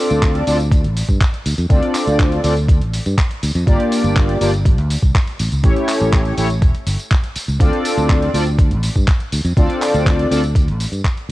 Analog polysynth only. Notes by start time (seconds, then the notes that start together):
Already playing: C4 D4 F4 A4 D5
0.46 C4 D4 F4 A4 D5
1.69 C4 D4 F4 A4 D5
2.43 C4 D4 F4 A4 D5
3.66 A#3 D4 F4 G4 D5
4.40 A#3 D4 F4 G4 D5
5.63 A3 C#4 E4 G4 C#5
6.37 A3 C#4 E4 G4 C#5
7.59 C4 D4 F4 A4 D5
8.33 C4 D4 F4 A4 D5
9.56 C4 D4 F4 A4 D5
10.30 C4 D4 F4 A4 D5